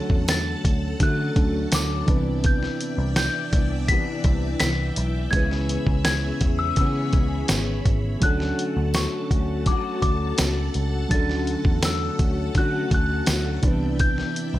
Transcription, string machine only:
0.00 2.04 A4 medium
0.00 2.04 F#5 medium
0.00 2.05 A5 medium
2.09 5.31 D5 medium
2.09 8.19 E5 medium
2.09 5.31 G5 medium
5.32 8.19 G#4 medium
5.32 8.19 C#5 medium
5.32 8.19 B5 medium
8.20 13.59 A4 medium
8.20 13.59 F#5 medium
8.20 13.60 A5 medium
13.64 14.59 D5 medium
13.64 14.59 E5 medium
13.64 14.59 G5 medium

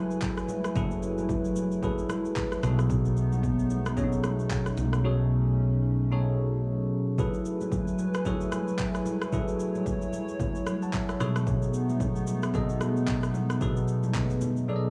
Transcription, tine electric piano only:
0.00 0.76 F#3 medium
0.00 0.76 E4 medium
0.00 0.76 G#4 medium
0.00 0.77 A4 medium
0.00 0.77 B4 medium
0.00 0.56 C#5 medium
0.76 1.62 F#3 medium
0.76 1.62 E4 medium
0.76 1.62 G#4 medium
0.76 1.63 A4 medium
0.76 1.63 B4 medium
1.83 2.62 F#3 medium
1.83 2.63 E4 medium
1.83 2.62 G#4 medium
1.83 2.63 A4 medium
1.83 2.64 B4 medium
2.63 3.50 B2 medium
2.63 3.50 F#3 medium
2.63 3.50 D#4 medium
2.63 3.50 G#4 medium
2.63 3.50 A4 medium
2.63 3.50 C#5 loud
3.97 4.84 B2 medium
3.97 4.84 F#3 medium
3.97 4.05 C#4 medium
3.97 4.84 G#4 medium
3.97 4.84 A4 medium
3.97 4.84 C#5 medium
4.04 4.87 D#4 medium
5.04 5.91 B2 medium
5.04 5.91 F#3 medium
5.04 5.91 D#4 medium
5.04 5.91 G#4 medium
5.04 5.91 A4 medium
5.04 5.91 C#5 medium
6.11 6.98 B2 medium
6.11 6.98 F#3 medium
6.11 6.98 D#4 medium
6.11 6.98 G#4 medium
6.11 6.98 A4 medium
6.11 6.98 C#5 medium
7.19 8.05 F#3 medium
7.19 8.05 E4 medium
7.19 8.05 G#4 medium
7.19 8.05 A4 medium
7.19 8.06 B4 medium
8.25 9.12 F#3 medium
8.25 9.12 E4 medium
8.25 9.12 G#4 medium
8.25 9.13 A4 medium
8.25 9.13 C#5 medium
9.33 10.19 F#3 medium
9.33 10.19 E4 medium
9.33 10.20 G#4 medium
9.33 10.20 A4 medium
9.33 10.20 B4 medium
10.83 10.93 F#5 medium
10.83 10.93 A5 medium
10.94 11.08 E5 medium
10.94 11.08 G#5 medium
11.09 11.20 C#5 medium
11.09 11.35 E5 medium
11.20 12.07 B2 medium
11.20 12.07 F#3 medium
11.20 12.07 D#4 medium
11.20 12.07 G#4 medium
11.20 12.07 A4 medium
11.20 12.07 C#5 loud
12.54 13.41 B2 medium
12.54 13.41 F#3 medium
12.54 13.41 D#4 medium
12.54 13.41 G#4 medium
12.54 13.41 A4 medium
12.54 13.41 D#5 medium
13.61 14.48 B2 medium
13.61 14.48 F#3 medium
13.61 14.48 D#4 medium
13.61 14.48 G#4 medium
13.61 14.48 A4 medium
13.61 14.48 B4 medium
14.68 14.90 B2 medium
14.68 14.90 F#3 medium
14.68 14.90 D#4 medium
14.68 14.90 G#4 medium
14.68 14.90 A4 medium
14.68 14.76 D5 medium
14.76 14.90 D#5 medium

